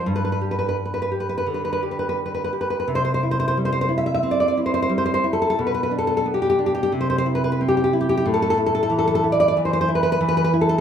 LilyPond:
\new Staff \with { instrumentName = "Nylon-string guitar" } { \time 4/4 \key c \major \tempo 4 = 90 << { r32 b'32 b'32 b'32 r32 b'32 b'32 b'32 r32 b'32 b'32 b'32 r32 b'32 b'32 b'32 r32 b'32 b'32 b'32 r32 b'32 b'32 b'32 r32 b'32 b'32 b'32 r32 b'32 b'32 b'32 | r32 c''32 c''32 c''32 r32 c''32 c''32 c''32 r32 c''32 c''32 c''32 r32 e''32 e''32 e''32 r32 d''32 d''32 d''32 r32 c''32 c''32 c''32 r32 c''32 c''32 c''32 r32 a'32 a'32 a'32 | r32 b'32 b'32 b'32 r32 a'32 a'32 a'32 r32 g'32 g'32 g'32 r32 g'32 g'32 g'32 r32 c''32 c''32 c''32 r32 b'32 b'32 b'32 r32 g'32 g'32 g'32 r32 g'32 g'32 g'32 | r32 a'32 a'32 a'32 r32 a'32 a'32 a'32 r32 a'32 a'32 a'32 r32 d''32 d''32 d''32 r32 c''32 c''32 c''32 r32 b'32 b'32 b'32 r32 b'32 b'32 b'32 r32 a'32 a'32 r32 | } \\ { g,8 g'4 g'8 d8 g'4 g'8 | c8 e'8 g8 e'8 c'8 e'8 g8 e'8 | b,8 d'8 b8 d'8 c8 e'8 c'8 e'8 | a,8 e'8 e8 e'8 e8 e'8 e8 e'8 | } >> }